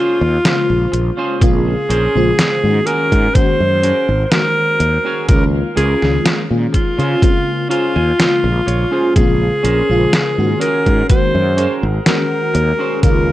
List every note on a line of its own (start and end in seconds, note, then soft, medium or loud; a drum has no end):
0.00 0.21 C#4 medium
0.00 0.21 F4 medium
0.00 1.11 F4 loud
0.00 0.22 G#4 medium
0.00 0.22 C5 loud
0.21 0.37 D#2 loud
0.45 1.36 C#3 medium
0.45 1.36 G#3 medium
0.45 1.37 A#3 medium
0.45 1.37 F4 loud
0.45 1.37 C5 medium
0.45 snare loud
0.45 closed hi-hat medium
0.70 0.85 A#1 medium
0.92 1.10 A#1 medium
0.92 muted clean electric guitar stroke medium
0.92 closed hi-hat medium
1.17 1.41 C#4 medium
1.17 1.41 F4 medium
1.17 1.42 G#4 medium
1.17 1.42 C5 medium
1.41 1.74 A#1 loud
1.41 1.77 C#3 loud
1.41 1.77 G#3 medium
1.41 1.77 A#3 medium
1.41 1.77 C4 loud
1.41 1.77 F4 loud
1.41 2.87 G#4 loud
1.41 kick loud
1.41 closed hi-hat medium
1.89 2.06 A#1 loud
1.89 2.15 C#4 medium
1.89 2.15 G#4 medium
1.89 2.15 A#4 medium
1.89 2.16 C5 loud
1.89 closed hi-hat medium
2.15 2.31 A#1 medium
2.15 2.58 C#3 loud
2.15 2.58 G#3 medium
2.15 2.58 A#3 medium
2.15 2.58 F4 loud
2.15 2.58 C5 medium
2.39 snare loud
2.39 closed hi-hat medium
2.63 2.79 G#2 medium
2.63 3.30 D#3 medium
2.63 3.30 G#3 medium
2.63 3.30 A#3 medium
2.63 3.30 C#4 medium
2.63 3.30 F#4 medium
2.86 3.65 C#4 medium
2.86 3.65 F#4 medium
2.86 3.65 G#4 medium
2.86 3.36 A#4 loud
2.86 3.65 A#4 medium
2.86 closed hi-hat medium
3.12 3.27 G#2 medium
3.12 kick medium
3.12 closed hi-hat soft
3.34 3.78 D#3 loud
3.34 3.78 G#3 medium
3.34 3.78 A#3 medium
3.34 3.79 C#4 medium
3.34 3.79 F#4 loud
3.34 4.25 C5 loud
3.34 muted fretless electric bass stroke soft
3.34 kick loud
3.34 closed hi-hat medium
3.60 3.91 F#2 medium
3.83 4.09 C#4 medium
3.83 4.09 F#4 medium
3.83 4.09 G#4 medium
3.83 4.09 A#4 medium
3.83 closed hi-hat medium
4.09 4.24 G#1 loud
4.25 4.32 C5 medium
4.31 5.23 D#3 medium
4.31 5.23 G#3 medium
4.31 5.24 A#3 medium
4.31 5.24 C#4 medium
4.31 5.24 F#4 medium
4.31 5.28 A#4 loud
4.31 snare loud
4.31 closed hi-hat medium
4.79 4.97 D#2 medium
4.79 muted clean electric guitar stroke medium
4.79 closed hi-hat medium
5.04 5.28 C#4 medium
5.04 5.29 F#4 medium
5.04 5.29 G#4 medium
5.04 5.29 C#5 medium
5.28 5.61 C#2 loud
5.28 5.64 D#3 loud
5.28 5.64 G#3 loud
5.28 5.64 A#3 loud
5.28 5.64 C#4 loud
5.28 5.64 F4 loud
5.28 5.44 A#4 loud
5.28 kick loud
5.28 closed hi-hat medium
5.76 5.94 C#2 medium
5.76 6.02 C#4 medium
5.76 6.02 F4 medium
5.76 6.44 G#4 loud
5.76 6.02 G#4 medium
5.76 6.03 A#4 loud
5.76 closed hi-hat medium
6.02 6.17 C#2 medium
6.02 6.45 D#3 medium
6.02 6.45 G#3 medium
6.02 6.45 A#3 medium
6.02 6.45 C#4 medium
6.02 6.45 F4 loud
6.02 snare soft
6.26 snare loud
6.26 closed hi-hat medium
6.50 6.66 A#2 medium
6.50 7.17 D#3 medium
6.50 7.17 G#3 medium
6.50 7.17 A#3 medium
6.50 7.17 C#4 medium
6.50 7.17 F4 medium
6.73 7.67 F4 loud
6.73 muted clean electric guitar stroke medium
6.73 kick medium
6.73 closed hi-hat medium
6.98 7.14 C#3 medium
6.98 7.22 C#4 medium
6.98 7.22 F4 medium
6.98 7.22 G#4 medium
6.98 7.23 C5 medium
6.98 closed hi-hat soft
7.22 7.65 C#3 loud
7.22 7.65 G#3 medium
7.22 7.65 A#3 loud
7.22 7.66 C4 medium
7.22 7.66 F4 loud
7.22 kick loud
7.22 closed hi-hat medium
7.69 7.95 C#4 medium
7.69 7.96 F4 medium
7.69 9.12 F4 loud
7.69 7.96 G#4 medium
7.69 7.96 C5 loud
7.69 7.94 A#5 medium
7.69 closed hi-hat medium
7.96 8.11 D#2 loud
7.96 8.18 G#5 medium
8.19 9.10 C#3 medium
8.19 9.10 G#3 medium
8.19 9.11 A#3 medium
8.19 9.11 F4 medium
8.19 8.64 F5 medium
8.19 snare loud
8.19 closed hi-hat medium
8.44 8.59 A#1 medium
8.66 8.84 A#1 medium
8.66 9.12 C#5 medium
8.66 muted clean electric guitar stroke medium
8.66 closed hi-hat medium
8.91 9.15 C#4 medium
8.91 9.15 F4 medium
8.91 9.16 G#4 medium
8.91 9.16 C5 medium
9.16 9.48 A#1 loud
9.16 9.51 C#3 loud
9.16 9.51 G#3 loud
9.16 9.51 A#3 medium
9.16 9.51 C4 medium
9.16 9.52 F4 loud
9.16 10.57 G#4 loud
9.16 10.60 A#4 medium
9.16 10.60 G#5 medium
9.16 10.60 C6 medium
9.16 kick loud
9.16 closed hi-hat medium
9.63 9.81 A#1 loud
9.63 9.89 C#4 medium
9.63 9.89 G#4 medium
9.63 9.90 A#4 medium
9.63 9.90 C5 medium
9.63 closed hi-hat medium
9.89 10.05 A#1 medium
9.89 10.32 C#3 medium
9.89 10.32 G#3 medium
9.89 10.32 A#3 medium
9.89 10.33 F4 loud
9.89 10.32 C5 medium
10.13 snare loud
10.13 closed hi-hat medium
10.38 10.53 G#2 medium
10.38 11.04 D#3 medium
10.38 11.04 G#3 medium
10.38 11.04 A#3 medium
10.38 11.04 C#4 medium
10.38 11.05 F#4 medium
10.60 11.39 C#4 loud
10.60 11.39 F#4 medium
10.60 11.39 G#4 medium
10.60 13.32 G#4 medium
10.60 11.06 A#4 loud
10.60 11.40 A#4 loud
10.60 13.01 F#5 medium
10.60 13.01 A#5 medium
10.60 closed hi-hat medium
10.86 11.01 G#2 medium
10.86 kick medium
10.86 closed hi-hat soft
11.09 11.52 D#3 loud
11.09 11.53 G#3 medium
11.09 11.53 A#3 loud
11.09 11.53 C#4 medium
11.09 11.53 F#4 loud
11.09 11.76 C5 loud
11.09 muted fretless electric bass stroke soft
11.09 kick loud
11.09 closed hi-hat medium
11.35 11.66 F#2 medium
11.57 11.83 C#4 medium
11.57 11.83 F#4 medium
11.57 11.83 G#4 medium
11.57 11.83 C5 loud
11.57 closed hi-hat medium
11.83 11.98 G#1 loud
12.06 12.98 D#3 medium
12.06 12.98 G#3 medium
12.06 12.98 A#3 medium
12.06 12.98 C#4 medium
12.06 12.98 F#4 medium
12.06 12.99 A#4 loud
12.06 snare loud
12.06 closed hi-hat medium
12.54 12.71 D#2 loud
12.54 muted clean electric guitar stroke medium
12.54 closed hi-hat medium
12.79 13.02 C#4 medium
12.79 13.03 F#4 medium
12.79 13.03 G#4 medium
12.79 13.03 C5 medium
13.02 13.32 C#2 loud
13.02 13.32 D#3 loud
13.02 13.32 G#3 loud
13.02 13.32 A#3 loud
13.02 13.32 C#4 medium
13.02 13.32 F4 loud
13.02 13.32 A#4 loud
13.02 kick loud
13.02 closed hi-hat medium